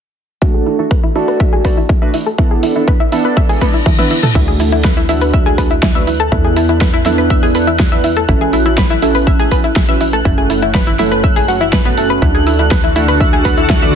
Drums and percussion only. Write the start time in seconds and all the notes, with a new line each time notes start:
0.42 kick
0.66 open hi-hat
0.91 kick
1.15 open hi-hat
1.28 open hi-hat
1.40 kick
1.65 kick, open hi-hat
1.89 kick
2.14 open hi-hat
2.38 kick
2.63 open hi-hat
2.88 kick
3.12 open hi-hat
3.37 kick
3.49 open hi-hat
3.61 kick, open hi-hat, high tom
3.86 kick, mid tom
3.99 mid tom
4.11 open hi-hat
4.23 mid tom
4.35 kick, closed hi-hat, crash, shaker
4.48 closed hi-hat
4.60 open hi-hat, shaker
4.72 closed hi-hat, shaker
4.84 kick, snare, closed hi-hat, shaker
4.97 closed hi-hat, shaker
5.09 open hi-hat, shaker
5.21 open hi-hat, shaker
5.33 kick, closed hi-hat, shaker
5.46 closed hi-hat, shaker
5.58 kick, open hi-hat, shaker
5.71 closed hi-hat, shaker
5.83 kick, snare, closed hi-hat, shaker
5.95 closed hi-hat
6.07 open hi-hat, shaker
6.20 closed hi-hat, shaker
6.32 kick, closed hi-hat, shaker
6.44 closed hi-hat
6.57 open hi-hat, shaker
6.69 closed hi-hat, shaker
6.81 kick, snare, closed hi-hat, shaker
6.94 closed hi-hat, shaker
7.06 snare, open hi-hat, shaker
7.18 closed hi-hat, shaker
7.30 kick, closed hi-hat, shaker
7.43 open hi-hat, shaker
7.55 open hi-hat, shaker
7.67 closed hi-hat, shaker
7.79 kick, snare, closed hi-hat, shaker
7.92 closed hi-hat
8.04 open hi-hat, shaker
8.16 closed hi-hat, shaker
8.29 kick, closed hi-hat, shaker
8.41 closed hi-hat
8.53 open hi-hat, shaker
8.66 closed hi-hat, shaker
8.78 kick, snare, closed hi-hat, shaker
8.90 closed hi-hat, shaker
9.02 open hi-hat, shaker
9.15 open hi-hat, shaker
9.27 kick, closed hi-hat, shaker
9.39 closed hi-hat, shaker
9.52 kick, open hi-hat, shaker
9.64 closed hi-hat, shaker
9.76 kick, snare, closed hi-hat, shaker
9.89 closed hi-hat
10.01 open hi-hat, shaker
10.13 closed hi-hat, shaker
10.25 kick, closed hi-hat, shaker
10.38 closed hi-hat
10.50 open hi-hat, shaker
10.62 closed hi-hat, shaker
10.74 kick, snare, closed hi-hat, shaker
10.87 closed hi-hat, shaker
10.99 snare, open hi-hat, shaker
11.12 closed hi-hat, shaker
11.24 kick, closed hi-hat, shaker
11.36 open hi-hat, shaker
11.48 open hi-hat, shaker
11.61 closed hi-hat, shaker
11.73 kick, snare, closed hi-hat, shaker
11.85 closed hi-hat
11.98 open hi-hat, shaker
12.10 closed hi-hat, shaker
12.22 kick, closed hi-hat, shaker
12.35 closed hi-hat
12.47 open hi-hat, shaker
12.59 closed hi-hat, shaker
12.71 kick, snare, closed hi-hat, shaker
12.84 closed hi-hat, shaker
12.96 open hi-hat, shaker
13.08 open hi-hat, shaker
13.20 kick, closed hi-hat, shaker
13.33 closed hi-hat, shaker
13.45 kick, open hi-hat, shaker
13.58 closed hi-hat, shaker
13.70 kick, snare, closed hi-hat, shaker
13.82 closed hi-hat